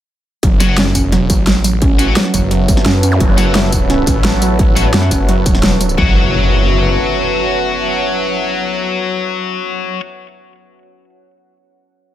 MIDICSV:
0, 0, Header, 1, 9, 480
1, 0, Start_track
1, 0, Key_signature, 3, "minor"
1, 0, Tempo, 346821
1, 595, Time_signature, 4, 2, 24, 8
1, 16814, End_track
2, 0, Start_track
2, 0, Title_t, "Ambient pad"
2, 0, Program_c, 0, 92
2, 597, Note_on_c, 0, 71, 86
2, 819, Note_on_c, 0, 76, 81
2, 879, Note_on_c, 0, 81, 86
2, 8259, Note_off_c, 0, 71, 0
2, 8276, Note_off_c, 0, 76, 0
2, 8276, Note_off_c, 0, 81, 0
2, 8276, Note_on_c, 0, 71, 82
2, 8346, Note_on_c, 0, 76, 87
2, 8419, Note_on_c, 0, 81, 85
2, 13166, Note_off_c, 0, 76, 0
2, 13167, Note_off_c, 0, 71, 0
2, 13167, Note_off_c, 0, 81, 0
2, 16814, End_track
3, 0, Start_track
3, 0, Title_t, "Ambient pad"
3, 0, Program_c, 1, 92
3, 594, Note_on_c, 1, 66, 79
3, 594, Note_on_c, 1, 78, 89
3, 595, Note_on_c, 1, 73, 71
3, 8219, Note_off_c, 1, 66, 0
3, 8219, Note_off_c, 1, 78, 0
3, 8220, Note_off_c, 1, 73, 0
3, 8273, Note_on_c, 1, 73, 69
3, 8274, Note_on_c, 1, 66, 77
3, 8274, Note_on_c, 1, 78, 83
3, 13166, Note_off_c, 1, 66, 0
3, 13166, Note_off_c, 1, 73, 0
3, 13166, Note_off_c, 1, 78, 0
3, 16814, End_track
4, 0, Start_track
4, 0, Title_t, "Distorted electric guitar"
4, 0, Program_c, 2, 30
4, 831, Note_on_c, 2, 78, 105
4, 837, Note_on_c, 2, 73, 82
4, 841, Note_on_c, 2, 66, 80
4, 937, Note_off_c, 2, 66, 0
4, 937, Note_off_c, 2, 73, 0
4, 937, Note_off_c, 2, 78, 0
4, 951, Note_on_c, 2, 78, 102
4, 958, Note_on_c, 2, 73, 79
4, 962, Note_on_c, 2, 66, 75
4, 1031, Note_off_c, 2, 66, 0
4, 1031, Note_off_c, 2, 73, 0
4, 1031, Note_off_c, 2, 78, 0
4, 2749, Note_on_c, 2, 78, 98
4, 2759, Note_on_c, 2, 73, 77
4, 2764, Note_on_c, 2, 66, 74
4, 2831, Note_off_c, 2, 66, 0
4, 2831, Note_off_c, 2, 73, 0
4, 2831, Note_off_c, 2, 78, 0
4, 2872, Note_on_c, 2, 78, 94
4, 2877, Note_on_c, 2, 73, 86
4, 2881, Note_on_c, 2, 66, 84
4, 2951, Note_off_c, 2, 66, 0
4, 2951, Note_off_c, 2, 73, 0
4, 2951, Note_off_c, 2, 78, 0
4, 4671, Note_on_c, 2, 78, 119
4, 4677, Note_on_c, 2, 73, 94
4, 4683, Note_on_c, 2, 66, 88
4, 4777, Note_off_c, 2, 66, 0
4, 4777, Note_off_c, 2, 73, 0
4, 4777, Note_off_c, 2, 78, 0
4, 4791, Note_on_c, 2, 78, 108
4, 4796, Note_on_c, 2, 73, 74
4, 4801, Note_on_c, 2, 66, 77
4, 4871, Note_off_c, 2, 66, 0
4, 4871, Note_off_c, 2, 73, 0
4, 4871, Note_off_c, 2, 78, 0
4, 6591, Note_on_c, 2, 78, 92
4, 6597, Note_on_c, 2, 73, 72
4, 6604, Note_on_c, 2, 66, 86
4, 6671, Note_off_c, 2, 66, 0
4, 6671, Note_off_c, 2, 73, 0
4, 6671, Note_off_c, 2, 78, 0
4, 8273, Note_on_c, 2, 66, 95
4, 8277, Note_on_c, 2, 73, 73
4, 8282, Note_on_c, 2, 78, 85
4, 13843, Note_off_c, 2, 66, 0
4, 13843, Note_off_c, 2, 73, 0
4, 13843, Note_off_c, 2, 78, 0
4, 16814, End_track
5, 0, Start_track
5, 0, Title_t, "Synth arpeggio sound"
5, 0, Program_c, 3, 84
5, 595, Note_on_c, 3, 54, 85
5, 718, Note_off_c, 3, 54, 0
5, 835, Note_on_c, 3, 54, 78
5, 909, Note_off_c, 3, 54, 0
5, 1075, Note_on_c, 3, 61, 77
5, 1198, Note_off_c, 3, 61, 0
5, 1315, Note_on_c, 3, 61, 76
5, 1389, Note_off_c, 3, 61, 0
5, 1555, Note_on_c, 3, 54, 98
5, 1740, Note_off_c, 3, 54, 0
5, 1795, Note_on_c, 3, 54, 103
5, 1980, Note_off_c, 3, 54, 0
5, 2034, Note_on_c, 3, 54, 80
5, 2158, Note_off_c, 3, 54, 0
5, 2275, Note_on_c, 3, 54, 80
5, 2349, Note_off_c, 3, 54, 0
5, 2514, Note_on_c, 3, 61, 86
5, 2638, Note_off_c, 3, 61, 0
5, 2755, Note_on_c, 3, 61, 78
5, 2829, Note_off_c, 3, 61, 0
5, 2995, Note_on_c, 3, 54, 102
5, 3180, Note_off_c, 3, 54, 0
5, 3234, Note_on_c, 3, 54, 108
5, 3420, Note_off_c, 3, 54, 0
5, 3474, Note_on_c, 3, 54, 86
5, 3598, Note_off_c, 3, 54, 0
5, 3715, Note_on_c, 3, 54, 84
5, 3789, Note_off_c, 3, 54, 0
5, 3955, Note_on_c, 3, 61, 78
5, 4078, Note_off_c, 3, 61, 0
5, 4195, Note_on_c, 3, 61, 81
5, 4269, Note_off_c, 3, 61, 0
5, 4434, Note_on_c, 3, 54, 107
5, 4620, Note_off_c, 3, 54, 0
5, 4675, Note_on_c, 3, 54, 104
5, 4860, Note_off_c, 3, 54, 0
5, 4915, Note_on_c, 3, 54, 84
5, 5038, Note_off_c, 3, 54, 0
5, 5155, Note_on_c, 3, 54, 75
5, 5229, Note_off_c, 3, 54, 0
5, 5395, Note_on_c, 3, 61, 87
5, 5519, Note_off_c, 3, 61, 0
5, 5636, Note_on_c, 3, 61, 81
5, 5709, Note_off_c, 3, 61, 0
5, 5876, Note_on_c, 3, 54, 104
5, 6061, Note_off_c, 3, 54, 0
5, 6116, Note_on_c, 3, 54, 109
5, 6301, Note_off_c, 3, 54, 0
5, 6356, Note_on_c, 3, 54, 90
5, 6479, Note_off_c, 3, 54, 0
5, 6596, Note_on_c, 3, 54, 81
5, 6669, Note_off_c, 3, 54, 0
5, 6836, Note_on_c, 3, 61, 82
5, 6959, Note_off_c, 3, 61, 0
5, 7076, Note_on_c, 3, 61, 83
5, 7149, Note_off_c, 3, 61, 0
5, 7316, Note_on_c, 3, 54, 105
5, 7500, Note_off_c, 3, 54, 0
5, 7555, Note_on_c, 3, 54, 105
5, 7740, Note_off_c, 3, 54, 0
5, 7795, Note_on_c, 3, 54, 81
5, 7919, Note_off_c, 3, 54, 0
5, 8036, Note_on_c, 3, 54, 81
5, 8109, Note_off_c, 3, 54, 0
5, 8275, Note_on_c, 3, 54, 100
5, 8498, Note_off_c, 3, 54, 0
5, 16814, End_track
6, 0, Start_track
6, 0, Title_t, "Detuned saw bass"
6, 0, Program_c, 4, 39
6, 595, Note_on_c, 4, 30, 88
6, 1426, Note_off_c, 4, 30, 0
6, 1426, Note_on_c, 4, 29, 88
6, 1776, Note_off_c, 4, 29, 0
6, 1795, Note_on_c, 4, 33, 96
6, 2976, Note_off_c, 4, 33, 0
6, 3236, Note_on_c, 4, 30, 104
6, 3696, Note_off_c, 4, 30, 0
6, 3715, Note_on_c, 4, 31, 98
6, 3936, Note_off_c, 4, 31, 0
6, 3955, Note_on_c, 4, 42, 98
6, 4416, Note_off_c, 4, 42, 0
6, 4436, Note_on_c, 4, 30, 90
6, 5616, Note_off_c, 4, 30, 0
6, 5636, Note_on_c, 4, 33, 97
6, 6816, Note_off_c, 4, 33, 0
6, 6835, Note_on_c, 4, 42, 96
6, 7056, Note_off_c, 4, 42, 0
6, 7075, Note_on_c, 4, 30, 97
6, 7776, Note_off_c, 4, 30, 0
6, 7795, Note_on_c, 4, 28, 97
6, 8256, Note_off_c, 4, 28, 0
6, 8275, Note_on_c, 4, 30, 90
6, 9660, Note_off_c, 4, 30, 0
6, 16814, End_track
7, 0, Start_track
7, 0, Title_t, "Impact"
7, 0, Program_c, 5, 103
7, 8275, Note_on_c, 5, 60, 72
7, 13898, Note_off_c, 5, 60, 0
7, 16814, End_track
8, 0, Start_track
8, 0, Title_t, "Zap"
8, 0, Program_c, 6, 103
8, 4315, Note_on_c, 6, 60, 65
8, 4435, Note_off_c, 6, 60, 0
8, 16814, End_track
9, 0, Start_track
9, 0, Title_t, "Drums"
9, 595, Note_on_c, 9, 36, 125
9, 595, Note_on_c, 9, 42, 86
9, 733, Note_off_c, 9, 36, 0
9, 734, Note_off_c, 9, 42, 0
9, 835, Note_on_c, 9, 40, 58
9, 835, Note_on_c, 9, 42, 97
9, 835, Note_on_c, 9, 54, 63
9, 974, Note_off_c, 9, 40, 0
9, 974, Note_off_c, 9, 42, 0
9, 974, Note_off_c, 9, 54, 0
9, 1075, Note_on_c, 9, 38, 122
9, 1075, Note_on_c, 9, 42, 81
9, 1213, Note_off_c, 9, 38, 0
9, 1213, Note_off_c, 9, 42, 0
9, 1315, Note_on_c, 9, 36, 62
9, 1315, Note_on_c, 9, 42, 99
9, 1315, Note_on_c, 9, 54, 62
9, 1454, Note_off_c, 9, 36, 0
9, 1454, Note_off_c, 9, 42, 0
9, 1454, Note_off_c, 9, 54, 0
9, 1555, Note_on_c, 9, 40, 49
9, 1555, Note_on_c, 9, 42, 82
9, 1694, Note_off_c, 9, 40, 0
9, 1694, Note_off_c, 9, 42, 0
9, 1795, Note_on_c, 9, 36, 106
9, 1795, Note_on_c, 9, 42, 98
9, 1795, Note_on_c, 9, 54, 60
9, 1934, Note_off_c, 9, 36, 0
9, 1934, Note_off_c, 9, 42, 0
9, 1934, Note_off_c, 9, 54, 0
9, 2036, Note_on_c, 9, 38, 111
9, 2036, Note_on_c, 9, 42, 79
9, 2174, Note_off_c, 9, 38, 0
9, 2174, Note_off_c, 9, 42, 0
9, 2275, Note_on_c, 9, 42, 96
9, 2275, Note_on_c, 9, 54, 59
9, 2414, Note_off_c, 9, 42, 0
9, 2414, Note_off_c, 9, 54, 0
9, 2515, Note_on_c, 9, 36, 123
9, 2515, Note_on_c, 9, 42, 84
9, 2654, Note_off_c, 9, 36, 0
9, 2654, Note_off_c, 9, 42, 0
9, 2755, Note_on_c, 9, 42, 93
9, 2755, Note_on_c, 9, 54, 58
9, 2894, Note_off_c, 9, 42, 0
9, 2894, Note_off_c, 9, 54, 0
9, 2996, Note_on_c, 9, 38, 121
9, 2996, Note_on_c, 9, 42, 77
9, 3116, Note_on_c, 9, 40, 36
9, 3134, Note_off_c, 9, 38, 0
9, 3134, Note_off_c, 9, 42, 0
9, 3235, Note_on_c, 9, 36, 65
9, 3236, Note_on_c, 9, 42, 92
9, 3236, Note_on_c, 9, 54, 62
9, 3254, Note_off_c, 9, 40, 0
9, 3373, Note_off_c, 9, 36, 0
9, 3374, Note_off_c, 9, 42, 0
9, 3374, Note_off_c, 9, 54, 0
9, 3475, Note_on_c, 9, 42, 80
9, 3614, Note_off_c, 9, 42, 0
9, 3715, Note_on_c, 9, 36, 115
9, 3715, Note_on_c, 9, 42, 96
9, 3715, Note_on_c, 9, 54, 59
9, 3835, Note_on_c, 9, 40, 61
9, 3853, Note_off_c, 9, 42, 0
9, 3853, Note_off_c, 9, 54, 0
9, 3854, Note_off_c, 9, 36, 0
9, 3955, Note_on_c, 9, 38, 118
9, 3955, Note_on_c, 9, 42, 78
9, 3974, Note_off_c, 9, 40, 0
9, 4093, Note_off_c, 9, 38, 0
9, 4093, Note_off_c, 9, 42, 0
9, 4195, Note_on_c, 9, 42, 102
9, 4195, Note_on_c, 9, 54, 58
9, 4333, Note_off_c, 9, 42, 0
9, 4333, Note_off_c, 9, 54, 0
9, 4435, Note_on_c, 9, 36, 127
9, 4435, Note_on_c, 9, 42, 84
9, 4573, Note_off_c, 9, 42, 0
9, 4574, Note_off_c, 9, 36, 0
9, 4675, Note_on_c, 9, 40, 58
9, 4675, Note_on_c, 9, 42, 94
9, 4675, Note_on_c, 9, 54, 58
9, 4813, Note_off_c, 9, 40, 0
9, 4813, Note_off_c, 9, 42, 0
9, 4813, Note_off_c, 9, 54, 0
9, 4915, Note_on_c, 9, 38, 122
9, 4915, Note_on_c, 9, 42, 77
9, 5054, Note_off_c, 9, 38, 0
9, 5054, Note_off_c, 9, 42, 0
9, 5155, Note_on_c, 9, 36, 68
9, 5155, Note_on_c, 9, 42, 88
9, 5155, Note_on_c, 9, 54, 60
9, 5293, Note_off_c, 9, 42, 0
9, 5293, Note_off_c, 9, 54, 0
9, 5294, Note_off_c, 9, 36, 0
9, 5395, Note_on_c, 9, 40, 46
9, 5395, Note_on_c, 9, 42, 74
9, 5533, Note_off_c, 9, 40, 0
9, 5533, Note_off_c, 9, 42, 0
9, 5635, Note_on_c, 9, 36, 111
9, 5635, Note_on_c, 9, 42, 94
9, 5635, Note_on_c, 9, 54, 59
9, 5773, Note_off_c, 9, 42, 0
9, 5773, Note_off_c, 9, 54, 0
9, 5774, Note_off_c, 9, 36, 0
9, 5875, Note_on_c, 9, 38, 125
9, 5875, Note_on_c, 9, 42, 73
9, 6014, Note_off_c, 9, 38, 0
9, 6014, Note_off_c, 9, 42, 0
9, 6115, Note_on_c, 9, 42, 90
9, 6115, Note_on_c, 9, 54, 57
9, 6253, Note_off_c, 9, 42, 0
9, 6253, Note_off_c, 9, 54, 0
9, 6355, Note_on_c, 9, 36, 123
9, 6355, Note_on_c, 9, 42, 85
9, 6493, Note_off_c, 9, 42, 0
9, 6494, Note_off_c, 9, 36, 0
9, 6595, Note_on_c, 9, 42, 87
9, 6595, Note_on_c, 9, 54, 57
9, 6734, Note_off_c, 9, 42, 0
9, 6734, Note_off_c, 9, 54, 0
9, 6835, Note_on_c, 9, 38, 120
9, 6835, Note_on_c, 9, 42, 75
9, 6956, Note_on_c, 9, 40, 33
9, 6974, Note_off_c, 9, 38, 0
9, 6974, Note_off_c, 9, 42, 0
9, 7075, Note_on_c, 9, 36, 67
9, 7076, Note_on_c, 9, 42, 90
9, 7076, Note_on_c, 9, 54, 58
9, 7094, Note_off_c, 9, 40, 0
9, 7214, Note_off_c, 9, 36, 0
9, 7214, Note_off_c, 9, 42, 0
9, 7214, Note_off_c, 9, 54, 0
9, 7316, Note_on_c, 9, 42, 78
9, 7454, Note_off_c, 9, 42, 0
9, 7555, Note_on_c, 9, 36, 114
9, 7556, Note_on_c, 9, 42, 92
9, 7556, Note_on_c, 9, 54, 59
9, 7676, Note_on_c, 9, 40, 60
9, 7694, Note_off_c, 9, 36, 0
9, 7694, Note_off_c, 9, 42, 0
9, 7694, Note_off_c, 9, 54, 0
9, 7796, Note_on_c, 9, 38, 122
9, 7796, Note_on_c, 9, 42, 73
9, 7815, Note_off_c, 9, 40, 0
9, 7934, Note_off_c, 9, 38, 0
9, 7934, Note_off_c, 9, 42, 0
9, 8036, Note_on_c, 9, 42, 93
9, 8036, Note_on_c, 9, 54, 58
9, 8156, Note_off_c, 9, 54, 0
9, 8156, Note_on_c, 9, 54, 27
9, 8174, Note_off_c, 9, 42, 0
9, 8275, Note_on_c, 9, 36, 118
9, 8294, Note_off_c, 9, 54, 0
9, 8414, Note_off_c, 9, 36, 0
9, 16814, End_track
0, 0, End_of_file